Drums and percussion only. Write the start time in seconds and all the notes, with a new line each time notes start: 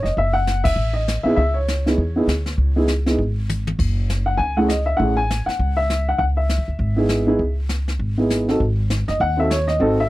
0.05 snare
0.17 brush sweep, kick
0.47 snare, hi-hat pedal
0.65 kick, ride
0.78 brush sweep
1.08 snare, hi-hat pedal
1.37 brush sweep, kick
1.68 snare, hi-hat pedal
1.87 snare
1.98 brush sweep, kick
2.28 snare, hi-hat pedal
2.46 snare
2.57 brush sweep, kick
2.88 snare, hi-hat pedal
3.06 snare
3.19 brush sweep, kick
3.49 hi-hat pedal, high tom
3.67 high tom
3.79 brush sweep, kick, crash
4.10 snare, hi-hat pedal
4.39 brush sweep, kick
4.69 snare, hi-hat pedal
5.00 brush sweep, kick
5.30 snare, hi-hat pedal
5.49 snare
5.60 brush sweep, kick
5.90 snare, hi-hat pedal
6.19 brush sweep, kick
6.49 snare, hi-hat pedal
6.79 brush sweep, kick
7.09 snare, hi-hat pedal
7.39 brush sweep, kick
7.69 snare, hi-hat pedal
7.88 snare
7.99 brush sweep, kick
8.30 snare, hi-hat pedal
8.49 snare
8.60 brush sweep, kick
8.90 snare, hi-hat pedal
9.08 snare
9.21 brush sweep, kick
9.51 snare, hi-hat pedal
9.68 snare
9.80 brush sweep, kick